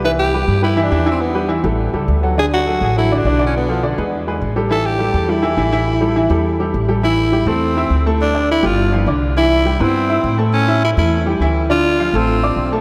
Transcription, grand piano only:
\new Staff \with { instrumentName = "Grand piano" } { \time 4/4 \key a \minor \tempo 4 = 206 <e e' e''>4 <g g' b'>4 <g g' b'>8 <e e' e''>8 <e e' e''>8 <e e' e''>8~ | <e e' e''>8 <g g' b'>8 <e e' e''>8 <g g' a'>4 <g g' a'>4 <fis fis' a'>8 | <d d' d''>4 <fis fis' a'>4 <fis fis' a'>8 <d d' d''>8 <d d' d''>8 <d d' d''>8~ | <d d' d''>8 <f f' a'>8 <d d' d''>8 <gis gis' b'>4 <gis gis' b'>4 <g g' a'>8 |
<e e' e''>4 <g g' a'>4 <g g' a'>8 <e e' e''>8 <e e' e''>8 <e e' e''>8~ | <e e' e''>8 <g g' a'>8 <e e' e''>8 <g g' a'>4 <g g' a'>4 <g g' a'>8 | <e e' e''>4 <g g' g''>8 <a a' a''>4 <e' e'' e'''>4 <a a' a''>8~ | <a a' a''>8 <d' d'' d'''>4 <g g' g''>4 <f f' f''>8 <d d' d''>4 |
<e e' e''>4 <g g' g''>8 <b b' b''>4 <e' e'' e'''>4 <a a' a''>8~ | <a a' a''>8 <e' e'' e'''>4 <a a' a''>4 <g g' g''>8 <e e' e''>4 | <d d' d''>4 <f f' f''>8 <a a' a''>4 <d' d'' d'''>4 <a a' a''>8 | }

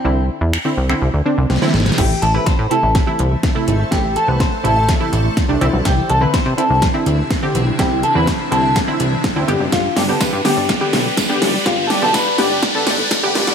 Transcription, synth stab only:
\new Staff \with { instrumentName = "Synth stab" } { \time 4/4 \key c \major \tempo 4 = 124 <d c' e'>8. r8 <d c' e'>16 r16 <d c' e'>8 r16 <d c' d'>8 r16 <d c' e'>8 r16 | <c a e'>8 r16 <c a e'>8 r16 <c a e'>8 r16 <c a e'>8 r8 <c a e'>8 r16 | <c a e'>8 r16 <c a b>8 r16 <c a e'>8 r16 <c a e'>8 r8 <c a d'>16 <d c' e'>8~ | <d c' e'>8 r16 <d c' e'>8 r16 <d c' e'>8 r16 <d c' e'>8 r8 <d c' g'>8 r16 |
<d c' e'>8 r16 <d c' e'>8 r16 <d c' e'>8 r16 <d c' e'>8 r8 <d c' e'>16 <d b g'>8~ | <d b g'>8 r16 <d b g'>8 r16 <d b g'>8 r16 <d b g'>8 r8 <d b g'>8 r16 | <d b g'>8 r16 <d b g'>8 r16 <d b g'>8 r16 <d b a'>8 r8 <d b g'>8 r16 | }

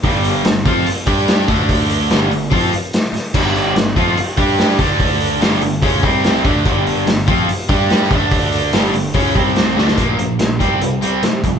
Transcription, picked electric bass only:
\new Staff \with { instrumentName = "Picked electric bass" } { \clef bass \time 4/4 \key d \dorian \tempo 4 = 145 g,,4 g,,8 f,8 r8 g,4 d,8~ | d,4 g,,8 g,,8 f,8 r4. | g,,4 g,,8 f,8 r8 g,4 d,8~ | d,4 g,,8 g,,8 cis,8 c,4 d,8 |
g,,4 g,,8 f,8 r8 g,4 d,8~ | d,4 g,,8 g,,8 cis,8 c,4 d,8 | bes,,8 bes,,8 bes,,8 c,8 c,8 c,8 c8 f,8 | }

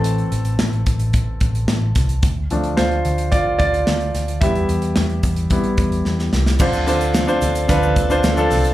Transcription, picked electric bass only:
\new Staff \with { instrumentName = "Picked electric bass" } { \clef bass \time 4/4 \key d \dorian \tempo 4 = 110 a,,8 a,,8 a,,8 a,,8. r16 a,,8 a,,8 c,8 | d,8 d,8 d,8 d,8. r16 d,8 d,8 d,8 | e,8 e,8 e,8 e,8. r16 e,8 e,8 c,8 | d,4~ d,16 r16 d,8 d,8 d,8 d,8 c,8 | }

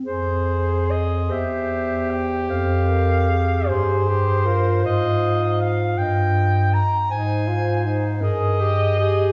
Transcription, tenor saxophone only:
\new Staff \with { instrumentName = "Tenor saxophone" } { \time 6/8 \key f \minor \tempo 4. = 51 aes'4. g'4.~ | g'4. aes'8 g'8 f'8~ | f'2~ f'8 r8 | ees'8 f'8 ees'8 aes'8 g'8 aes'8 | }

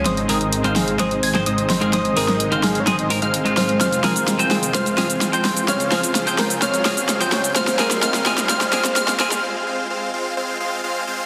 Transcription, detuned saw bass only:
\new Staff \with { instrumentName = "Detuned saw bass" } { \clef bass \time 4/4 \key aes \major \tempo 4 = 128 aes,,8 aes,,8. aes,,8. r8 aes,,8 aes,,8. aes,,16 | aes,,8 aes,,8. aes,,8. aes,,8. aes,,8. aes,8 | f,,8 f,,8. f,,8. f,,8 f,,8. f,,8. | des,8 des,8. des,8. des,8 des,8. des,8. |
aes,,8 aes,,8 aes,,8 aes,,8 aes,,8 aes,,8 aes,,8 aes,,8 | r1 | }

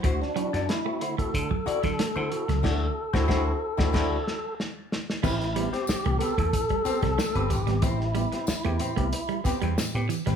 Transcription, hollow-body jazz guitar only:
\new Staff \with { instrumentName = "Hollow-body jazz guitar" } { \time 4/4 \key a \dorian \tempo 4 = 92 <e' fis' c''>16 r8 <e' fis' d''>16 r8 <e' fis' c''>16 r8. <e' fis' d''>16 r8 <e' fis' c''>16 r8 | <e' fis' d''>8 r16 <e' fis' c''>16 <e' fis' c''>8 r16 <e' fis' d''>16 <e' fis' d''>8 r4. | <c' g' b'>16 r8 <c' g' c''>16 r8 <c' g' b'>16 r8. <c' g' c''>16 r8 <c' g' b'>16 r8 | <c' g' c''>16 r8 <c' g' b'>16 r8 <c' g' c''>16 r8. <c' g' b'>16 <c' g' b'>16 r8. <c' g' b'>16 | }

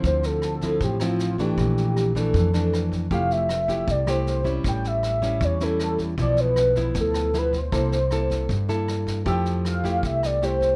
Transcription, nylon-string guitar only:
\new Staff \with { instrumentName = "Nylon-string guitar" } { \time 4/4 \key f \major \tempo 4 = 156 << { <f c' e'>4. <f c' e'>4 <f c' e'>4 <e a d'>8~ | <e a d'>4. <e a d'>4 <e a d'>4. | <a e' g'>4 r8 <a e' g'>4 <a e' g'>4 <g des' e'>8~ | <g des' e'>4. <g cis' e'>4 <g cis' e'>4. |
<f b e'>4. <f b e'>4. <f b e'>8 r8 | <bes e' a'>8 r8 <bes e' a'>4 r8 <bes e' a'>4. | <a e' g'>4. <a e' g'>4. <a e' g'>4 | } \\ { d2 a,2 | bes,2 f,2 | f2 c2 | a,2 e2 |
b,2 b,2 | c2 g,2 | f2 c2 | } >> }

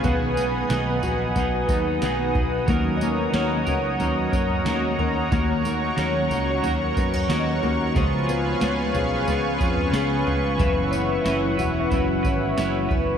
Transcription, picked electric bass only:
\new Staff \with { instrumentName = "Picked electric bass" } { \clef bass \time 4/4 \key dis \phrygian \tempo 4 = 91 b,,4 b,,8 ais,,8 b,,8 dis,8 b,,8 b,,8 | dis,4 dis,8 cis,8 dis,8 fis,8 dis,8 dis,8 | dis,4 dis,8 cis,8 dis,8 fis,8 dis,8 dis,8 | cis,4 cis,8 b,,8 cis,8 eis,8 cis,8 cis,8 |
fis,,4 fis,,8 e,,8 fis,,8 gis,,8 fis,,8 fis,,8 | }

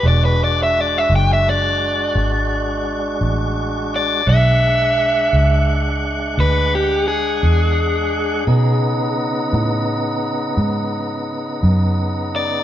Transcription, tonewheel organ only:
\new Staff \with { instrumentName = "Tonewheel organ" } { \time 12/8 \key e \mixolydian \tempo 4. = 57 <gis d' fis'>1. | <gis d' fis''>1. | <cis b dis'>1. | }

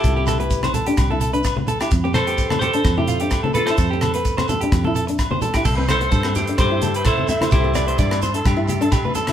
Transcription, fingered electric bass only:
\new Staff \with { instrumentName = "Fingered electric bass" } { \clef bass \time 4/4 \key c \major \tempo 4 = 128 c,2 c,2 | f,2 f,2 | f,2 f,2 | c,4 g,4 g,2 |
c,4 g,4 g,2 | }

